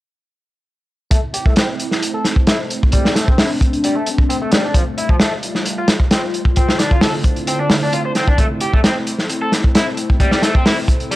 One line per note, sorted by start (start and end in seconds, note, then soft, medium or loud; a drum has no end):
1.11 1.17 A3 medium
1.11 6.53 A3 medium
1.11 4.72 C4 medium
1.11 2.92 E4 medium
1.11 kick medium
1.11 closed hi-hat medium
1.34 1.44 G4 medium
1.34 closed hi-hat medium
1.46 1.51 A3 medium
1.46 kick medium
1.56 1.67 C4 medium
1.56 snare loud
1.56 closed hi-hat medium
1.80 closed hi-hat medium
1.91 snare soft
2.03 closed hi-hat medium
2.14 2.23 A4 medium
2.25 snare soft
2.25 closed hi-hat medium
2.36 kick medium
2.47 2.58 E4 medium
2.47 snare loud
2.47 closed hi-hat medium
2.70 closed hi-hat medium
2.83 kick medium
2.92 3.04 G3 medium
2.92 4.73 D4 medium
2.92 kick loud
2.92 closed hi-hat medium
3.05 3.15 G3 medium
3.05 snare medium
3.16 3.27 A3 medium
3.16 snare soft
3.16 closed hi-hat medium
3.28 3.38 C4 medium
3.28 kick medium
3.38 3.49 E4 medium
3.38 snare loud
3.38 open hi-hat medium
3.61 kick medium
3.61 closed hi-hat medium
3.73 closed hi-hat soft
3.84 3.95 G3 medium
3.84 closed hi-hat medium
3.96 4.07 A3 medium
4.06 closed hi-hat medium
4.18 kick medium
4.29 4.36 C4 medium
4.29 closed hi-hat medium
4.42 4.52 A3 medium
4.52 4.62 G3 medium
4.52 snare medium
4.52 closed hi-hat medium
4.65 4.73 D4 medium
4.74 4.81 F3 medium
4.74 6.55 G3 medium
4.74 8.35 F4 medium
4.74 kick medium
4.74 closed hi-hat medium
4.98 5.08 E4 medium
4.98 closed hi-hat medium
5.09 5.15 F3 medium
5.09 kick medium
5.20 5.31 A3 medium
5.20 snare loud
5.20 closed hi-hat medium
5.43 closed hi-hat medium
5.55 snare soft
5.66 closed hi-hat medium
5.78 5.87 F4 medium
5.88 snare medium
5.88 closed hi-hat medium
6.00 kick medium
6.11 6.21 C4 medium
6.11 snare loud
6.11 closed hi-hat medium
6.34 closed hi-hat medium
6.45 kick medium
6.56 8.37 D3 medium
6.56 11.16 A3 medium
6.56 6.68 C4 medium
6.56 8.37 C4 medium
6.56 11.16 E4 medium
6.56 kick loud
6.56 closed hi-hat medium
6.69 6.79 C4 medium
6.69 snare medium
6.79 6.91 D4 medium
6.79 snare soft
6.79 closed hi-hat medium
6.91 7.01 F4 medium
6.91 kick medium
7.01 7.12 A4 medium
7.01 snare loud
7.01 open hi-hat medium
7.24 kick medium
7.24 closed hi-hat medium
7.36 closed hi-hat soft
7.47 7.59 C4 medium
7.47 closed hi-hat medium
7.60 7.70 D4 medium
7.70 snare loud
7.70 open hi-hat medium
7.83 7.92 D4 medium
7.93 7.99 F4 medium
7.93 closed hi-hat medium
8.05 8.11 C5 medium
8.15 8.26 C4 medium
8.15 snare soft
8.15 closed hi-hat medium
8.28 8.37 D4 medium
8.28 kick medium
8.38 8.45 A3 medium
8.38 11.16 C4 medium
8.38 kick loud
8.38 closed hi-hat medium
8.60 8.71 G4 medium
8.60 closed hi-hat medium
8.73 8.79 A3 medium
8.73 kick medium
8.84 8.94 C4 medium
8.84 snare loud
8.84 closed hi-hat medium
9.07 closed hi-hat medium
9.18 snare soft
9.29 closed hi-hat medium
9.41 9.50 A4 medium
9.52 snare soft
9.52 closed hi-hat medium
9.64 kick medium
9.75 9.85 E4 medium
9.75 snare loud
9.75 closed hi-hat medium
9.97 closed hi-hat medium
10.10 kick medium
10.20 10.31 G3 medium
10.20 kick medium
10.20 closed hi-hat medium
10.31 10.42 G3 medium
10.31 snare soft
10.42 10.54 A3 medium
10.42 snare medium
10.42 closed hi-hat medium
10.55 10.65 C4 medium
10.55 kick medium
10.66 10.76 E4 medium
10.66 snare loud
10.66 open hi-hat medium
10.88 kick medium
10.88 closed hi-hat medium
11.00 closed hi-hat soft
11.11 11.16 G3 medium
11.11 closed hi-hat medium